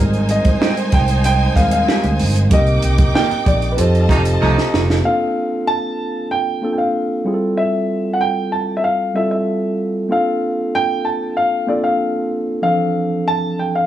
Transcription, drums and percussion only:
0, 0, Header, 1, 2, 480
1, 0, Start_track
1, 0, Tempo, 632244
1, 1908, Time_signature, 4, 2, 24, 8
1, 10527, End_track
2, 0, Start_track
2, 0, Title_t, "Drums"
2, 102, Note_on_c, 9, 42, 30
2, 178, Note_off_c, 9, 42, 0
2, 218, Note_on_c, 9, 42, 73
2, 294, Note_off_c, 9, 42, 0
2, 340, Note_on_c, 9, 42, 50
2, 343, Note_on_c, 9, 36, 93
2, 416, Note_off_c, 9, 42, 0
2, 419, Note_off_c, 9, 36, 0
2, 468, Note_on_c, 9, 38, 122
2, 544, Note_off_c, 9, 38, 0
2, 586, Note_on_c, 9, 42, 38
2, 662, Note_off_c, 9, 42, 0
2, 700, Note_on_c, 9, 42, 72
2, 704, Note_on_c, 9, 36, 107
2, 776, Note_off_c, 9, 42, 0
2, 780, Note_off_c, 9, 36, 0
2, 818, Note_on_c, 9, 42, 47
2, 894, Note_off_c, 9, 42, 0
2, 942, Note_on_c, 9, 42, 89
2, 1018, Note_off_c, 9, 42, 0
2, 1183, Note_on_c, 9, 36, 78
2, 1190, Note_on_c, 9, 42, 66
2, 1192, Note_on_c, 9, 38, 33
2, 1258, Note_off_c, 9, 36, 0
2, 1265, Note_off_c, 9, 42, 0
2, 1268, Note_off_c, 9, 38, 0
2, 1300, Note_on_c, 9, 42, 56
2, 1376, Note_off_c, 9, 42, 0
2, 1432, Note_on_c, 9, 38, 99
2, 1508, Note_off_c, 9, 38, 0
2, 1545, Note_on_c, 9, 42, 35
2, 1621, Note_off_c, 9, 42, 0
2, 1666, Note_on_c, 9, 46, 84
2, 1742, Note_off_c, 9, 46, 0
2, 1791, Note_on_c, 9, 42, 51
2, 1866, Note_off_c, 9, 42, 0
2, 1905, Note_on_c, 9, 42, 99
2, 1907, Note_on_c, 9, 36, 111
2, 1981, Note_off_c, 9, 42, 0
2, 1983, Note_off_c, 9, 36, 0
2, 2025, Note_on_c, 9, 42, 31
2, 2101, Note_off_c, 9, 42, 0
2, 2144, Note_on_c, 9, 42, 76
2, 2220, Note_off_c, 9, 42, 0
2, 2264, Note_on_c, 9, 42, 58
2, 2268, Note_on_c, 9, 36, 98
2, 2340, Note_off_c, 9, 42, 0
2, 2343, Note_off_c, 9, 36, 0
2, 2395, Note_on_c, 9, 38, 120
2, 2471, Note_off_c, 9, 38, 0
2, 2514, Note_on_c, 9, 42, 32
2, 2590, Note_off_c, 9, 42, 0
2, 2630, Note_on_c, 9, 36, 106
2, 2630, Note_on_c, 9, 42, 78
2, 2706, Note_off_c, 9, 36, 0
2, 2706, Note_off_c, 9, 42, 0
2, 2749, Note_on_c, 9, 42, 42
2, 2825, Note_off_c, 9, 42, 0
2, 2870, Note_on_c, 9, 42, 85
2, 2946, Note_off_c, 9, 42, 0
2, 2998, Note_on_c, 9, 42, 35
2, 3074, Note_off_c, 9, 42, 0
2, 3106, Note_on_c, 9, 36, 100
2, 3115, Note_on_c, 9, 42, 71
2, 3117, Note_on_c, 9, 38, 33
2, 3182, Note_off_c, 9, 36, 0
2, 3191, Note_off_c, 9, 42, 0
2, 3193, Note_off_c, 9, 38, 0
2, 3229, Note_on_c, 9, 42, 57
2, 3305, Note_off_c, 9, 42, 0
2, 3478, Note_on_c, 9, 38, 62
2, 3554, Note_off_c, 9, 38, 0
2, 3599, Note_on_c, 9, 38, 98
2, 3675, Note_off_c, 9, 38, 0
2, 3721, Note_on_c, 9, 38, 96
2, 3797, Note_off_c, 9, 38, 0
2, 10527, End_track
0, 0, End_of_file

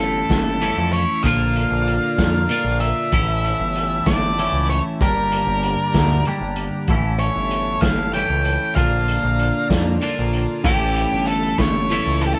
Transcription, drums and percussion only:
0, 0, Header, 1, 2, 480
1, 0, Start_track
1, 0, Tempo, 627615
1, 949, Time_signature, 6, 3, 24, 8
1, 9479, End_track
2, 0, Start_track
2, 0, Title_t, "Drums"
2, 228, Note_on_c, 9, 36, 69
2, 229, Note_on_c, 9, 42, 63
2, 234, Note_on_c, 9, 38, 99
2, 304, Note_off_c, 9, 36, 0
2, 306, Note_off_c, 9, 42, 0
2, 310, Note_off_c, 9, 38, 0
2, 469, Note_on_c, 9, 42, 50
2, 545, Note_off_c, 9, 42, 0
2, 712, Note_on_c, 9, 42, 57
2, 788, Note_off_c, 9, 42, 0
2, 947, Note_on_c, 9, 42, 68
2, 950, Note_on_c, 9, 36, 85
2, 1023, Note_off_c, 9, 42, 0
2, 1026, Note_off_c, 9, 36, 0
2, 1190, Note_on_c, 9, 42, 59
2, 1267, Note_off_c, 9, 42, 0
2, 1433, Note_on_c, 9, 42, 48
2, 1510, Note_off_c, 9, 42, 0
2, 1671, Note_on_c, 9, 36, 60
2, 1671, Note_on_c, 9, 42, 73
2, 1676, Note_on_c, 9, 38, 92
2, 1747, Note_off_c, 9, 36, 0
2, 1748, Note_off_c, 9, 42, 0
2, 1752, Note_off_c, 9, 38, 0
2, 1905, Note_on_c, 9, 42, 54
2, 1981, Note_off_c, 9, 42, 0
2, 2147, Note_on_c, 9, 42, 58
2, 2224, Note_off_c, 9, 42, 0
2, 2390, Note_on_c, 9, 36, 88
2, 2390, Note_on_c, 9, 42, 76
2, 2467, Note_off_c, 9, 36, 0
2, 2467, Note_off_c, 9, 42, 0
2, 2633, Note_on_c, 9, 42, 62
2, 2710, Note_off_c, 9, 42, 0
2, 2871, Note_on_c, 9, 42, 57
2, 2948, Note_off_c, 9, 42, 0
2, 3107, Note_on_c, 9, 42, 71
2, 3110, Note_on_c, 9, 36, 64
2, 3111, Note_on_c, 9, 38, 91
2, 3183, Note_off_c, 9, 42, 0
2, 3186, Note_off_c, 9, 36, 0
2, 3188, Note_off_c, 9, 38, 0
2, 3356, Note_on_c, 9, 42, 57
2, 3432, Note_off_c, 9, 42, 0
2, 3597, Note_on_c, 9, 42, 55
2, 3674, Note_off_c, 9, 42, 0
2, 3830, Note_on_c, 9, 36, 104
2, 3834, Note_on_c, 9, 42, 74
2, 3907, Note_off_c, 9, 36, 0
2, 3911, Note_off_c, 9, 42, 0
2, 4068, Note_on_c, 9, 42, 58
2, 4144, Note_off_c, 9, 42, 0
2, 4305, Note_on_c, 9, 42, 55
2, 4381, Note_off_c, 9, 42, 0
2, 4542, Note_on_c, 9, 42, 67
2, 4544, Note_on_c, 9, 36, 63
2, 4547, Note_on_c, 9, 38, 99
2, 4618, Note_off_c, 9, 42, 0
2, 4620, Note_off_c, 9, 36, 0
2, 4623, Note_off_c, 9, 38, 0
2, 4780, Note_on_c, 9, 42, 49
2, 4857, Note_off_c, 9, 42, 0
2, 5017, Note_on_c, 9, 42, 55
2, 5093, Note_off_c, 9, 42, 0
2, 5258, Note_on_c, 9, 42, 73
2, 5263, Note_on_c, 9, 36, 86
2, 5335, Note_off_c, 9, 42, 0
2, 5339, Note_off_c, 9, 36, 0
2, 5501, Note_on_c, 9, 42, 57
2, 5577, Note_off_c, 9, 42, 0
2, 5742, Note_on_c, 9, 42, 56
2, 5819, Note_off_c, 9, 42, 0
2, 5979, Note_on_c, 9, 42, 67
2, 5981, Note_on_c, 9, 36, 71
2, 5984, Note_on_c, 9, 38, 95
2, 6055, Note_off_c, 9, 42, 0
2, 6058, Note_off_c, 9, 36, 0
2, 6060, Note_off_c, 9, 38, 0
2, 6226, Note_on_c, 9, 42, 52
2, 6302, Note_off_c, 9, 42, 0
2, 6461, Note_on_c, 9, 42, 59
2, 6537, Note_off_c, 9, 42, 0
2, 6699, Note_on_c, 9, 42, 74
2, 6702, Note_on_c, 9, 36, 100
2, 6776, Note_off_c, 9, 42, 0
2, 6778, Note_off_c, 9, 36, 0
2, 6946, Note_on_c, 9, 42, 63
2, 7022, Note_off_c, 9, 42, 0
2, 7182, Note_on_c, 9, 42, 54
2, 7259, Note_off_c, 9, 42, 0
2, 7421, Note_on_c, 9, 36, 70
2, 7422, Note_on_c, 9, 42, 75
2, 7426, Note_on_c, 9, 38, 96
2, 7498, Note_off_c, 9, 36, 0
2, 7498, Note_off_c, 9, 42, 0
2, 7503, Note_off_c, 9, 38, 0
2, 7659, Note_on_c, 9, 42, 61
2, 7736, Note_off_c, 9, 42, 0
2, 7897, Note_on_c, 9, 42, 59
2, 7974, Note_off_c, 9, 42, 0
2, 8139, Note_on_c, 9, 42, 73
2, 8140, Note_on_c, 9, 36, 101
2, 8215, Note_off_c, 9, 42, 0
2, 8216, Note_off_c, 9, 36, 0
2, 8382, Note_on_c, 9, 42, 58
2, 8458, Note_off_c, 9, 42, 0
2, 8622, Note_on_c, 9, 42, 57
2, 8699, Note_off_c, 9, 42, 0
2, 8858, Note_on_c, 9, 42, 76
2, 8859, Note_on_c, 9, 36, 64
2, 8863, Note_on_c, 9, 38, 88
2, 8935, Note_off_c, 9, 42, 0
2, 8936, Note_off_c, 9, 36, 0
2, 8939, Note_off_c, 9, 38, 0
2, 9097, Note_on_c, 9, 42, 53
2, 9174, Note_off_c, 9, 42, 0
2, 9338, Note_on_c, 9, 42, 56
2, 9415, Note_off_c, 9, 42, 0
2, 9479, End_track
0, 0, End_of_file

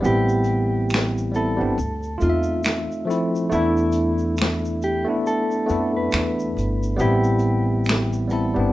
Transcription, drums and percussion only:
0, 0, Header, 1, 2, 480
1, 0, Start_track
1, 0, Key_signature, 0, "minor"
1, 0, Tempo, 869565
1, 18, Time_signature, 4, 2, 24, 8
1, 4817, End_track
2, 0, Start_track
2, 0, Title_t, "Drums"
2, 23, Note_on_c, 9, 82, 62
2, 79, Note_off_c, 9, 82, 0
2, 159, Note_on_c, 9, 82, 44
2, 215, Note_off_c, 9, 82, 0
2, 242, Note_on_c, 9, 42, 63
2, 242, Note_on_c, 9, 82, 49
2, 297, Note_off_c, 9, 42, 0
2, 297, Note_off_c, 9, 82, 0
2, 494, Note_on_c, 9, 82, 60
2, 499, Note_on_c, 9, 26, 68
2, 520, Note_off_c, 9, 26, 0
2, 520, Note_on_c, 9, 26, 97
2, 521, Note_on_c, 9, 38, 115
2, 550, Note_off_c, 9, 82, 0
2, 575, Note_off_c, 9, 26, 0
2, 576, Note_off_c, 9, 38, 0
2, 650, Note_on_c, 9, 82, 50
2, 706, Note_off_c, 9, 82, 0
2, 741, Note_on_c, 9, 42, 54
2, 741, Note_on_c, 9, 82, 41
2, 796, Note_off_c, 9, 42, 0
2, 796, Note_off_c, 9, 82, 0
2, 986, Note_on_c, 9, 82, 64
2, 1041, Note_off_c, 9, 82, 0
2, 1120, Note_on_c, 9, 82, 46
2, 1176, Note_off_c, 9, 82, 0
2, 1218, Note_on_c, 9, 42, 60
2, 1218, Note_on_c, 9, 82, 48
2, 1273, Note_off_c, 9, 42, 0
2, 1273, Note_off_c, 9, 82, 0
2, 1342, Note_on_c, 9, 82, 52
2, 1397, Note_off_c, 9, 82, 0
2, 1454, Note_on_c, 9, 82, 62
2, 1460, Note_on_c, 9, 26, 73
2, 1468, Note_off_c, 9, 26, 0
2, 1468, Note_on_c, 9, 26, 108
2, 1468, Note_on_c, 9, 38, 127
2, 1509, Note_off_c, 9, 82, 0
2, 1523, Note_off_c, 9, 26, 0
2, 1523, Note_off_c, 9, 38, 0
2, 1609, Note_on_c, 9, 82, 47
2, 1665, Note_off_c, 9, 82, 0
2, 1713, Note_on_c, 9, 42, 77
2, 1713, Note_on_c, 9, 82, 53
2, 1769, Note_off_c, 9, 42, 0
2, 1769, Note_off_c, 9, 82, 0
2, 1852, Note_on_c, 9, 82, 52
2, 1907, Note_off_c, 9, 82, 0
2, 1941, Note_on_c, 9, 82, 62
2, 1996, Note_off_c, 9, 82, 0
2, 2081, Note_on_c, 9, 82, 46
2, 2137, Note_off_c, 9, 82, 0
2, 2164, Note_on_c, 9, 42, 71
2, 2164, Note_on_c, 9, 82, 49
2, 2219, Note_off_c, 9, 42, 0
2, 2219, Note_off_c, 9, 82, 0
2, 2309, Note_on_c, 9, 82, 48
2, 2364, Note_off_c, 9, 82, 0
2, 2412, Note_on_c, 9, 82, 63
2, 2419, Note_on_c, 9, 26, 72
2, 2438, Note_off_c, 9, 26, 0
2, 2438, Note_on_c, 9, 26, 103
2, 2438, Note_on_c, 9, 38, 115
2, 2467, Note_off_c, 9, 82, 0
2, 2493, Note_off_c, 9, 26, 0
2, 2493, Note_off_c, 9, 38, 0
2, 2568, Note_on_c, 9, 82, 50
2, 2623, Note_off_c, 9, 82, 0
2, 2661, Note_on_c, 9, 42, 55
2, 2661, Note_on_c, 9, 82, 41
2, 2716, Note_off_c, 9, 42, 0
2, 2716, Note_off_c, 9, 82, 0
2, 2907, Note_on_c, 9, 82, 62
2, 2962, Note_off_c, 9, 82, 0
2, 3041, Note_on_c, 9, 82, 46
2, 3097, Note_off_c, 9, 82, 0
2, 3141, Note_on_c, 9, 42, 61
2, 3141, Note_on_c, 9, 82, 48
2, 3196, Note_off_c, 9, 42, 0
2, 3196, Note_off_c, 9, 82, 0
2, 3375, Note_on_c, 9, 82, 60
2, 3381, Note_on_c, 9, 26, 74
2, 3389, Note_off_c, 9, 26, 0
2, 3389, Note_on_c, 9, 26, 109
2, 3390, Note_on_c, 9, 38, 120
2, 3431, Note_off_c, 9, 82, 0
2, 3444, Note_off_c, 9, 26, 0
2, 3445, Note_off_c, 9, 38, 0
2, 3530, Note_on_c, 9, 82, 50
2, 3586, Note_off_c, 9, 82, 0
2, 3633, Note_on_c, 9, 42, 72
2, 3633, Note_on_c, 9, 82, 53
2, 3688, Note_off_c, 9, 42, 0
2, 3688, Note_off_c, 9, 82, 0
2, 3770, Note_on_c, 9, 82, 54
2, 3825, Note_off_c, 9, 82, 0
2, 3858, Note_on_c, 9, 82, 63
2, 3913, Note_off_c, 9, 82, 0
2, 3995, Note_on_c, 9, 82, 46
2, 4051, Note_off_c, 9, 82, 0
2, 4078, Note_on_c, 9, 42, 66
2, 4078, Note_on_c, 9, 82, 46
2, 4133, Note_off_c, 9, 42, 0
2, 4133, Note_off_c, 9, 82, 0
2, 4331, Note_on_c, 9, 82, 63
2, 4340, Note_on_c, 9, 26, 73
2, 4357, Note_off_c, 9, 26, 0
2, 4357, Note_on_c, 9, 26, 103
2, 4358, Note_on_c, 9, 38, 123
2, 4387, Note_off_c, 9, 82, 0
2, 4412, Note_off_c, 9, 26, 0
2, 4413, Note_off_c, 9, 38, 0
2, 4487, Note_on_c, 9, 82, 52
2, 4542, Note_off_c, 9, 82, 0
2, 4580, Note_on_c, 9, 42, 57
2, 4580, Note_on_c, 9, 82, 39
2, 4635, Note_off_c, 9, 42, 0
2, 4635, Note_off_c, 9, 82, 0
2, 4817, End_track
0, 0, End_of_file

